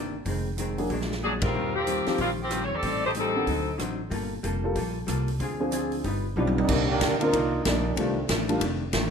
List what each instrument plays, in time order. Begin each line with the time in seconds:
Already playing: upright bass G1, hollow-body jazz guitar C3 D#3 A#3 D4
0.25 upright bass F1, hollow-body jazz guitar F2 D#3 G#3 C4, kick, open hi-hat
0.57 hollow-body jazz guitar F2 D#3 G#3 C4, closed hi-hat
0.78 grand piano F#3 A#3 D4 G#4, open hi-hat
0.90 upright bass A#1, hollow-body jazz guitar A#2 F#3 G#3 D4, kick, open hi-hat
1.01 snare
1.12 snare
1.23 hollow-body jazz guitar A#2 F#3 G#3 D4, saxophone section F#3 C#4 D4 G#4
1.42 saxophone section G3 C4 F4 A#4, kick, ride
1.54 upright bass D#2, hollow-body jazz guitar D#3 G3 C4 F4
1.75 saxophone section F3 A#3 C4 G4
1.87 hollow-body jazz guitar D#3 G3 C4 F4, closed hi-hat
2.06 grand piano F3 C4 D#4 G4, muted upright bass stroke, snare, open hi-hat
2.18 upright bass A#1, hollow-body jazz guitar D#3 G3 C4 F4, saxophone section G3 A#3 C4 F4, kick, open hi-hat
2.42 saxophone section F3 A#3 C4 G4
2.51 hollow-body jazz guitar D#3 G3 C4 F4, cross-stick, closed hi-hat
2.65 saxophone section C#5
2.71 upright bass E2, saxophone section D5
2.75 saxophone section C4 G4 A4
2.82 upright bass A1, hollow-body jazz guitar A2 G3 C4 D#4, kick, open hi-hat
3.05 saxophone section A3 D#4 G4 C5
3.15 hollow-body jazz guitar A2 G3 C4 D#4, closed hi-hat
3.19 saxophone section G3 C4 D#4 A4
3.35 grand piano D#3 C4 D4 F#4
3.47 upright bass D2, hollow-body jazz guitar D3 F#3 C4 D#4, kick, open hi-hat
3.78 upright bass A1, hollow-body jazz guitar D3 F#3 C4 D#4, cross-stick, closed hi-hat
4.10 upright bass G1, hollow-body jazz guitar G3 A#3 F4 A4, kick, open hi-hat
4.43 upright bass F1, hollow-body jazz guitar G3 A#3 F4 A4, closed hi-hat
4.64 grand piano G3 A#3 F4 A4
4.76 upright bass A#1, hollow-body jazz guitar G3 A#3 F4 A4, kick, open hi-hat
5.07 upright bass C2, hollow-body jazz guitar G3 A#3 F4 A4, cross-stick, closed hi-hat
5.28 open hi-hat
5.40 upright bass D2, hollow-body jazz guitar D3 C4 F4 G#4, kick, open hi-hat
5.60 grand piano F3 C4 D4 G#4
5.72 hollow-body jazz guitar D3 C4 F4 G#4, closed hi-hat
5.92 open hi-hat
6.04 upright bass G1, hollow-body jazz guitar G3 D#4 F4 B4, kick, open hi-hat
6.36 upright bass B1, grand piano F3 B3 D#4 G4, trombone section F3 G3 B3 D4, hollow-body jazz guitar G3 D#4 F4 B4, high tom
6.47 high tom
6.57 trombone section G3 A#3 D4 D#4, high tom
6.68 upright bass C2, hollow-body jazz guitar C3 D#3 A#3 D4, grand piano D#3 A#3 C4 D4 G4, kick, crash
6.89 trombone section D#3 A#3 D4 G4
7.01 upright bass D2, hollow-body jazz guitar C3 D#3 A#3 D4, kick, snare, hi-hat pedal, ride
7.19 grand piano D#3 A#3 C4 D4 A#4, trombone section A#3 D4 D#4 F4, ride
7.33 upright bass C2, hollow-body jazz guitar C3 D#3 A#3 D4, kick, ride
7.65 upright bass A#1, hollow-body jazz guitar C3 D#3 A#3 D4, trombone section G3 A#3 D4 D#4, kick, snare, hi-hat pedal, ride
7.96 upright bass C2, hollow-body jazz guitar F2 D#3 A3, grand piano D#3 G3 A3 D4 F4, trombone section G3 A3 C4 D4, kick, ride
8.01 hollow-body jazz guitar D4
8.29 upright bass A1, hollow-body jazz guitar F2 D#3 A3 D4, kick, snare, hi-hat pedal, ride
8.49 grand piano D#3 G3 A3 D4 F4, ride
8.61 upright bass F1, hollow-body jazz guitar F2 D#3 A3 D4, kick, ride
8.93 upright bass A1, hollow-body jazz guitar F2 D#3 A3 D4, kick, snare, hi-hat pedal, ride